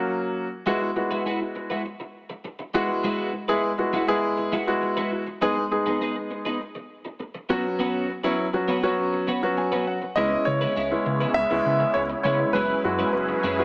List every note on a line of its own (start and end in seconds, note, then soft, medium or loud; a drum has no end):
0.00 0.46 F#3 medium
0.00 0.46 A#3 medium
0.00 0.46 C#4 medium
0.00 0.46 F#4 medium
0.66 0.80 G#3 medium
0.66 0.88 G#3 medium
0.66 0.88 B3 medium
0.66 0.88 E4 medium
0.66 0.80 E4 medium
0.66 0.88 F#4 loud
0.66 0.81 F#4 loud
0.66 0.80 B4 medium
0.81 muted clean electric guitar stroke soft
0.96 1.82 G#3 medium
0.96 1.82 B3 medium
0.96 1.82 E4 medium
0.96 1.82 F#4 medium
0.96 muted clean electric guitar stroke soft
1.11 1.22 G#3 soft
1.11 1.22 E4 medium
1.11 1.22 F#4 medium
1.11 1.22 B4 medium
1.25 1.40 G#3 medium
1.25 1.40 E4 medium
1.25 1.40 F#4 medium
1.25 1.39 B4 medium
1.40 muted clean electric guitar stroke soft
1.55 muted clean electric guitar stroke soft
1.70 1.82 G#3 soft
1.70 1.82 E4 medium
1.70 1.81 F#4 medium
1.70 1.81 B4 medium
1.85 muted clean electric guitar stroke soft
2.00 muted clean electric guitar stroke soft
2.30 muted clean electric guitar stroke medium
2.44 muted clean electric guitar stroke soft
2.59 muted clean electric guitar stroke soft
2.74 2.88 G#3 medium
2.74 3.28 G#3 loud
2.74 3.28 B3 medium
2.74 2.88 E4 medium
2.74 3.28 E4 medium
2.74 3.28 F#4 loud
2.74 2.88 F#4 medium
2.74 2.88 B4 medium
2.89 muted clean electric guitar stroke soft
3.04 3.31 G#3 medium
3.04 3.32 E4 medium
3.04 3.32 F#4 medium
3.04 3.32 B4 loud
3.33 muted clean electric guitar stroke soft
3.48 3.70 G#3 medium
3.48 3.60 G#3 medium
3.48 3.70 B3 medium
3.48 3.70 E4 medium
3.48 3.60 E4 medium
3.48 3.60 F#4 medium
3.48 3.70 G#4 loud
3.48 3.59 B4 medium
3.63 muted clean electric guitar stroke soft
3.78 4.00 G#3 medium
3.78 4.00 B3 medium
3.78 4.00 E4 medium
3.78 4.00 F#4 medium
3.78 muted clean electric guitar stroke soft
3.93 4.07 G#3 medium
3.93 4.07 E4 medium
3.93 4.07 F#4 medium
3.93 4.06 B4 medium
4.08 4.51 G#3 loud
4.08 4.20 G#3 medium
4.08 4.51 B3 medium
4.08 4.51 E4 medium
4.08 4.19 E4 medium
4.08 4.19 F#4 medium
4.08 4.51 G#4 loud
4.08 4.19 B4 medium
4.38 muted clean electric guitar stroke soft
4.52 4.66 G#3 medium
4.52 4.67 E4 medium
4.52 4.67 F#4 medium
4.52 4.66 B4 loud
4.67 5.21 G#3 medium
4.67 5.21 B3 medium
4.67 5.21 E4 medium
4.67 5.21 F#4 loud
4.67 muted clean electric guitar stroke medium
4.82 muted clean electric guitar stroke soft
4.97 5.11 G#3 medium
4.97 5.11 E4 medium
4.97 5.11 F#4 medium
4.97 5.11 B4 medium
5.12 muted clean electric guitar stroke soft
5.27 muted clean electric guitar stroke soft
5.41 5.63 G#3 medium
5.41 5.55 B3 medium
5.41 5.63 B3 medium
5.41 5.63 D#4 medium
5.41 5.56 D#4 medium
5.41 5.63 G#4 loud
5.41 5.56 G#4 medium
5.41 5.55 B4 loud
5.56 muted clean electric guitar stroke soft
5.71 6.57 G#3 medium
5.71 6.57 B3 medium
5.71 6.57 D#4 medium
5.71 6.57 G#4 medium
5.71 muted clean electric guitar stroke soft
5.86 5.98 B3 medium
5.86 5.98 D#4 medium
5.86 5.97 G#4 medium
5.86 5.97 B4 medium
6.01 6.15 B3 medium
6.01 6.15 D#4 medium
6.01 6.15 G#4 medium
6.01 6.15 B4 medium
6.16 muted clean electric guitar stroke soft
6.31 muted clean electric guitar stroke soft
6.45 6.57 B3 medium
6.45 6.57 D#4 medium
6.45 6.57 G#4 medium
6.45 6.56 B4 medium
6.60 muted clean electric guitar stroke soft
6.75 muted clean electric guitar stroke soft
7.05 muted clean electric guitar stroke soft
7.20 muted clean electric guitar stroke soft
7.35 muted clean electric guitar stroke soft
7.49 8.09 F#3 medium
7.49 7.63 B3 medium
7.49 8.09 B3 medium
7.49 7.64 C#4 medium
7.49 8.09 C#4 medium
7.49 8.09 F#4 loud
7.49 7.64 F#4 medium
7.49 7.63 B4 medium
7.64 muted clean electric guitar stroke soft
7.79 8.06 B3 medium
7.79 8.07 C#4 medium
7.79 8.07 F#4 loud
7.79 8.07 B4 medium
8.09 muted clean electric guitar stroke soft
8.23 8.45 F#3 medium
8.23 8.45 B3 medium
8.23 8.35 B3 medium
8.23 8.45 C#4 medium
8.23 8.35 C#4 medium
8.23 8.46 E4 loud
8.23 8.35 F#4 medium
8.23 8.35 B4 medium
8.38 muted clean electric guitar stroke soft
8.53 8.75 F#3 medium
8.53 8.75 B3 medium
8.53 8.75 C#4 medium
8.53 8.75 F#4 medium
8.53 muted clean electric guitar stroke soft
8.68 8.82 B3 medium
8.68 8.82 C#4 medium
8.68 8.82 F#4 medium
8.68 8.82 B4 medium
8.83 9.26 F#3 medium
8.83 9.26 B3 medium
8.83 8.95 B3 soft
8.83 9.26 C#4 medium
8.83 8.95 C#4 medium
8.83 8.94 F#4 medium
8.83 9.26 F#4 loud
8.83 8.94 B4 medium
9.13 muted clean electric guitar stroke soft
9.27 9.41 B3 medium
9.27 9.42 C#4 medium
9.27 9.42 F#4 medium
9.27 9.41 B4 medium
9.42 9.96 F#3 medium
9.42 9.96 B3 medium
9.42 9.96 C#4 medium
9.42 9.97 F#4 medium
9.42 muted clean electric guitar stroke soft
9.57 9.85 G#5 medium
9.57 muted clean electric guitar stroke soft
9.72 9.86 B3 medium
9.72 9.86 C#4 medium
9.72 9.86 F#4 medium
9.72 9.86 B4 medium
9.87 10.15 F#5 medium
9.87 muted clean electric guitar stroke soft
10.02 muted clean electric guitar stroke soft
10.16 10.36 C#2 loud
10.16 12.52 C#3 medium
10.16 10.31 G#3 medium
10.16 10.71 G#3 medium
10.16 12.52 G#3 medium
10.16 10.71 B3 medium
10.16 12.52 B3 medium
10.16 12.52 C#4 medium
10.16 10.31 C#4 medium
10.16 10.71 C#4 medium
10.16 13.64 E4 medium
10.16 10.71 E4 medium
10.16 10.31 E4 medium
10.16 10.30 B4 loud
10.16 10.47 D#5 loud
10.31 muted clean electric guitar stroke soft
10.45 10.66 C#3 loud
10.45 11.38 C#5 medium
10.45 muted clean electric guitar stroke soft
10.61 10.73 G#3 soft
10.61 10.73 C#4 medium
10.61 10.72 E4 medium
10.61 10.72 B4 medium
10.76 10.96 C#2 loud
10.76 10.90 G#3 medium
10.76 10.90 C#4 medium
10.76 10.90 E4 medium
10.76 10.90 B4 medium
10.91 11.34 G#3 medium
10.91 11.34 B3 medium
10.91 11.34 C#4 medium
10.91 11.34 E4 medium
10.91 muted clean electric guitar stroke medium
11.06 11.25 C#3 loud
11.06 muted clean electric guitar stroke soft
11.20 11.32 G#3 medium
11.20 11.32 C#4 medium
11.20 11.32 E4 medium
11.20 11.32 B4 medium
11.34 11.46 C#2 loud
11.34 11.96 E5 loud
11.34 muted clean electric guitar stroke soft
11.50 11.60 C#2 loud
11.50 12.04 G#3 medium
11.50 12.04 B3 medium
11.50 12.04 C#4 medium
11.50 12.04 E4 medium
11.50 muted clean electric guitar stroke medium
11.65 11.85 C#3 loud
11.80 muted clean electric guitar stroke soft
11.94 12.15 C#2 loud
11.94 12.01 C#5 loud
11.94 muted clean electric guitar stroke soft
12.10 muted clean electric guitar stroke soft
12.23 12.44 C#3 medium
12.23 12.39 G#3 medium
12.23 12.55 G#3 medium
12.23 12.55 B3 medium
12.23 12.55 C#4 medium
12.23 12.39 C#4 medium
12.23 12.55 E4 medium
12.23 12.39 E4 medium
12.23 12.38 B4 medium
12.23 12.55 C#5 medium
12.39 muted clean electric guitar stroke soft
12.53 12.74 F#1 loud
12.53 13.64 F#3 medium
12.53 12.82 G#3 medium
12.53 13.64 C#4 medium
12.53 12.82 C#4 medium
12.53 12.82 E4 medium
12.53 13.64 G#4 medium
12.53 13.11 B4 medium
12.53 13.64 B4 medium
12.53 12.83 B4 medium
12.84 13.04 F#2 loud
12.84 13.38 G#3 medium
12.84 13.38 B3 medium
12.84 13.38 E4 medium
12.84 13.38 F#4 medium
12.84 muted clean electric guitar stroke soft
12.99 13.11 G#3 medium
12.99 13.10 C#4 medium
12.99 13.10 E4 medium
12.99 13.10 B4 medium
13.12 13.33 F#1 loud
13.12 13.64 B4 medium
13.12 muted clean electric guitar stroke soft
13.29 muted clean electric guitar stroke medium
13.43 13.63 F#2 loud
13.43 13.57 G#3 medium
13.43 13.58 C#4 medium
13.43 13.58 E4 medium
13.43 13.57 B4 medium
13.58 13.64 G#3 medium
13.58 13.64 G#3 soft
13.58 13.64 B3 medium
13.58 13.64 C#4 medium
13.58 13.64 E4 medium
13.58 13.64 F#4 medium
13.58 13.64 B4 medium